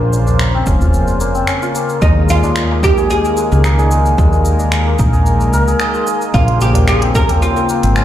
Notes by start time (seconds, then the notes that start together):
Already playing: A#1 C#3 A#3 C#4 F4 C5
0.13 tabla tin, shaker
0.27 tabla na, tabla ge, shaker
0.39 finger snap, shaker
0.54 C4, tabla tin
0.66 F1 C#4, kick, shaker
0.80 F4, tabla na, tabla ge, shaker
0.94 shaker
1.07 tabla na, shaker
1.20 A#3, shaker
1.35 C4, shaker
1.47 C#4, finger snap, shaker
1.62 F4, shaker
1.75 A#3, shaker
1.89 shaker
2.01 D#2 D#3 G#3 D#4 G#4, kick, shaker
2.16 tabla tin
2.29 F4, tabla tin, shaker
2.43 tabla na, tabla ge, shaker
2.56 finger snap, shaker
2.71 A#3, tabla tin
2.83 D#4 G4, kick, shaker
2.97 G#4, tabla ge, shaker
3.10 G#4, shaker
3.25 tabla tin, shaker
3.37 G#3, shaker
3.52 C#2 A#3, shaker
3.64 D#4, finger snap, shaker
3.78 G#4, tabla na, shaker
3.91 G#3, shaker
4.05 tabla tin, shaker
4.18 D#2 G#3 A#4, kick, tabla na, shaker
4.32 tabla tin, shaker
4.45 tabla tin, shaker
4.59 tabla na, tabla ge, shaker
4.72 finger snap, shaker
4.85 A#3, tabla tin
4.99 A#1 D#4, kick, shaker
5.13 G#4, tabla na, tabla ge, shaker
5.26 shaker
5.40 tabla na, shaker
5.53 C#2 A#4, shaker
5.68 G#4, shaker
5.80 D#5, finger snap, shaker
5.94 G#3, shaker
6.07 G#4, shaker
6.21 shaker
6.34 A#1 C#3 A#3 F4 C5, kick, shaker
6.48 closed hi-hat, tabla tin
6.60 G4, tabla tin, shaker
6.74 closed hi-hat, tabla na, tabla ge, shaker
6.88 G#4, finger snap, shaker
7.02 C4, closed hi-hat, tabla tin
7.15 C#4 A#4, kick, shaker
7.29 C4, closed hi-hat, tabla ge, shaker
7.42 F4, shaker
7.56 tabla tin, shaker
7.69 A#3, shaker
7.83 G#1 C4, closed hi-hat, shaker
7.96 C#4, finger snap, shaker